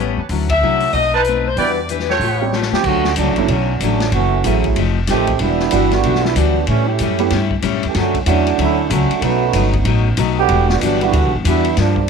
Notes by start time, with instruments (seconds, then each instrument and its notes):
Already playing: upright bass A1, steel-string acoustic guitar A2, saxophone section C#5
0.00 steel-string acoustic guitar G3 B3 C#4
0.17 upright bass D#2
0.29 upright bass D2, steel-string acoustic guitar D3 F#3 C#4 E4, open hi-hat
0.49 saxophone section E5, kick, ride
0.61 upright bass C2, steel-string acoustic guitar D3 F#3 C#4 E4, grand piano A3 C#4 E4 F#4
0.80 open hi-hat
0.93 upright bass B1, steel-string acoustic guitar B2 A3 C4 D#4, saxophone section D#5, open hi-hat
1.13 trumpet section D#4 B4 C5 A5, saxophone section B4
1.24 steel-string acoustic guitar B2 A3 C4 D#4, closed hi-hat
1.46 saxophone section C5
1.57 upright bass E2, steel-string acoustic guitar E3 D4 G4 B4, grand piano G3 B3 D4 F#4, trumpet section E4 B4 D5 G5, saxophone section D5, open hi-hat
1.89 steel-string acoustic guitar E3 D4 G4 B4, closed hi-hat
1.99 snare
2.09 trumpet section F4 A4 C#5 G5, saxophone section C#5, snare
2.20 upright bass A1, steel-string acoustic guitar A3 F4, open hi-hat
2.24 steel-string acoustic guitar G4 C#5
2.41 grand piano G3 C4 C#4 G4
2.52 steel-string acoustic guitar A3 F4 G4 C#5, snare
2.62 snare
2.72 upright bass D#2, trombone section F3 C4 C#4 G4, snare
2.84 upright bass D2, steel-string acoustic guitar D3 F#3 A3, trombone section D3 A3 C#4 F#4, kick, crash
2.88 steel-string acoustic guitar C#4
3.04 snare
3.16 upright bass C#2, steel-string acoustic guitar D3 F#3 A3, trombone section F#3 A3 C#4 D4, hi-hat pedal, ride
3.20 steel-string acoustic guitar C#4
3.28 upright bass A1
3.36 upright bass F#1, grand piano F#3 A3 C#4 D4 E4, ride
3.48 upright bass B1, trombone section D3 F#3 A3 C#4, steel-string acoustic guitar D3 F#3 A3, ride
3.53 steel-string acoustic guitar C#4
3.80 upright bass A1, steel-string acoustic guitar D3 F#3 A3 C#4, trombone section F#3 A3 C#4 D4, hi-hat pedal, ride
4.00 snare, ride
4.12 upright bass F#1, steel-string acoustic guitar F#2 E3 A3, trombone section E3 A3 C#4 F#4, ride
4.17 steel-string acoustic guitar C#4
4.44 upright bass A1, steel-string acoustic guitar F#2 E3 A3 C#4, grand piano F#3 A3 C#4 E4 G#4, hi-hat pedal, ride
4.64 kick, ride
4.76 upright bass F1, steel-string acoustic guitar F3 A3 D#4 G4, ride
5.07 upright bass A1, trombone section D#3 A3 C4 G4, steel-string acoustic guitar F3 A3 D#4, snare, hi-hat pedal, ride
5.12 steel-string acoustic guitar G4
5.27 kick, ride
5.39 upright bass E1, steel-string acoustic guitar E3 G3, trombone section G3 B3 D4 E4, ride
5.43 steel-string acoustic guitar D4 F#4
5.59 snare
5.71 upright bass G1, steel-string acoustic guitar E3 G3, grand piano G3 B3 D4 E4 F#4, hi-hat pedal, ride
5.75 steel-string acoustic guitar D4 F#4
5.91 trombone section D3 G3 B3 F#4, snare, ride
6.03 upright bass B1, steel-string acoustic guitar E3 G3 D4 F#4, ride
6.15 snare
6.25 trombone section G3 B3 D4 E4, snare
6.35 upright bass D2, steel-string acoustic guitar E3 G3 D4 F#4, trombone section F#3 G3 B3 D4, hi-hat pedal, ride
6.67 upright bass A2, steel-string acoustic guitar A2 G3 C#4 E4, trombone section E3 G3 A3 C#4, ride
6.88 trombone section A3 C#4 E4 G4
6.99 upright bass F#2, steel-string acoustic guitar A2 G3 C#4, hi-hat pedal, ride
7.03 steel-string acoustic guitar E4
7.19 grand piano A3 B3 C#4 E4 G4, ride
7.30 upright bass G2, steel-string acoustic guitar A2 G3 C#4 E4, snare, ride
7.51 kick
7.62 steel-string acoustic guitar A2 G3 C#4 E4, upright bass A2, hi-hat pedal, ride
7.74 upright bass G2
7.83 upright bass E2, trombone section A3, ride
7.87 trombone section E3 C#4 G4
7.95 upright bass F#2, steel-string acoustic guitar D3 F#3 A3 C#4, snare, ride
7.99 trombone section D3 A3 C#4 F#4
8.14 kick, ride
8.22 upright bass E2, grand piano A3, trombone section C#4, hi-hat pedal, ride
8.27 steel-string acoustic guitar D3 F#3 A3 C#4, trombone section F#3 A3 C#4 D4, grand piano D4 E4 F#4 C#5
8.47 ride
8.58 upright bass D2, steel-string acoustic guitar D3 F#3 A3 C#4, trombone section A3 C#4 D4 E4, ride
8.90 upright bass C#2, steel-string acoustic guitar D3 F#3 A3 C#4, trombone section D3 A3 C#4 F#4, hi-hat pedal, ride
9.11 ride
9.21 upright bass B1, steel-string acoustic guitar B2 F#3 A3 D#4, grand piano A3 B3 C#4 D#4 F#4, trombone section A3 D#4 F#4 B4, ride
9.53 upright bass G1, steel-string acoustic guitar B2 F#3 A3 D#4, hi-hat pedal, ride
9.73 kick, ride
9.85 upright bass A1, steel-string acoustic guitar B2 F#3 A3 D#4, ride
10.17 upright bass B1, steel-string acoustic guitar B2 F#3 A3 D#4, hi-hat pedal, ride
10.39 trombone section D3 B3 F#4 G4
10.49 upright bass E1, steel-string acoustic guitar E3 G3 D4 F#4, ride
10.70 trombone section D3 G3 B3 F#4, snare
10.81 upright bass G1, steel-string acoustic guitar E3 G3 D4 F#4, trombone section F#3 G3 B3 D4, hi-hat pedal, ride
11.01 trombone section D3 G3 B3 F#4, grand piano G3 B3 D4 E4 F#4, ride
11.12 upright bass D2, steel-string acoustic guitar E3 G3 D4 F#4, ride
11.24 upright bass B1
11.35 upright bass G1
11.45 upright bass E2, steel-string acoustic guitar E3 G3 D4 F#4, trombone section G3 B3 D4 E4, hi-hat pedal, ride
11.65 ride
11.77 steel-string acoustic guitar G2 F3 A#3 D4, upright bass G2, trombone section F3 G3 A#3 D4, snare, ride
11.96 kick